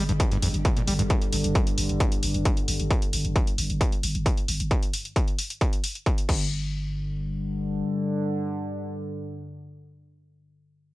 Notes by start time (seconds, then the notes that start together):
Already playing: G2 D3 G4 D5
0.09 G1 G2, closed hi-hat
0.20 kick, closed hi-hat
0.32 G2, closed hi-hat
0.42 G1 F2, open hi-hat
0.54 G1, closed hi-hat
0.65 D3, kick, closed hi-hat
0.77 A#2, closed hi-hat
0.87 G1 G3, open hi-hat
0.99 G1 G2, closed hi-hat
1.10 kick, closed hi-hat
1.22 closed hi-hat
1.33 G1, open hi-hat
1.44 G1, closed hi-hat
1.55 kick, closed hi-hat
1.67 closed hi-hat
1.78 G1, open hi-hat
1.89 G1, closed hi-hat
2.00 kick, closed hi-hat
2.12 closed hi-hat
2.23 G1, open hi-hat
2.34 G1, closed hi-hat
2.45 kick, closed hi-hat
2.57 closed hi-hat
2.68 G1, open hi-hat
2.80 G1, closed hi-hat
2.91 kick, closed hi-hat
3.02 closed hi-hat
3.13 G1, open hi-hat
3.25 G1, closed hi-hat
3.36 kick, closed hi-hat
3.47 closed hi-hat
3.58 G1, open hi-hat
3.70 G1, closed hi-hat
3.81 kick, closed hi-hat
3.92 closed hi-hat
4.03 G1, open hi-hat
4.15 G1, closed hi-hat
4.26 kick, closed hi-hat
4.37 closed hi-hat
4.48 G1, open hi-hat
4.60 G1, closed hi-hat
4.71 kick, closed hi-hat
4.83 closed hi-hat
4.93 open hi-hat
5.05 closed hi-hat
5.16 kick, closed hi-hat
5.28 closed hi-hat
5.39 open hi-hat
5.50 closed hi-hat
5.61 kick, closed hi-hat
5.73 closed hi-hat
5.84 open hi-hat
5.95 closed hi-hat
6.06 kick, closed hi-hat
6.18 closed hi-hat
6.29 G1 G2 D3, kick, crash